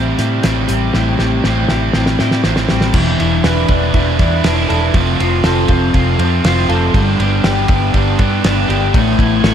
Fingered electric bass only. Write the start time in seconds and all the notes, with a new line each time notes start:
Already playing: A1
0.18 A2
0.44 A1
0.69 A1
0.94 A1
1.19 A1
1.45 A1
1.70 A1
1.95 A1
2.21 A2
2.45 A1
2.71 A1
2.94 E1
3.20 E1
3.45 E1
3.69 E1
3.94 E1
4.19 E2
4.44 E1
4.70 E1
4.95 F1
5.20 F1
5.45 F1
5.69 F1
5.94 F1
6.19 F2
6.45 F1
6.69 F1
6.94 G1
7.20 G1
7.44 G1
7.70 G1
7.94 G1
8.19 G2
8.44 G1
8.69 G1
8.94 A1
9.19 A1
9.44 A1